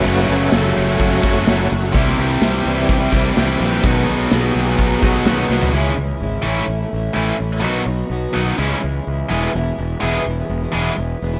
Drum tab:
HH |----o---o---o---|o---o---o---o---|o---o---o---o---|----------------|
SD |-o--o-------o---|-o--o-------o---|----o-------o-o-|----------------|
FT |----------------|----------------|---------------o|----------------|
BD |--------o-o-----|o-------o-o-----|o-------o-o-----|----------------|

HH |----------------|----------------|
SD |----------------|----------------|
FT |----------------|----------------|
BD |----------------|----------------|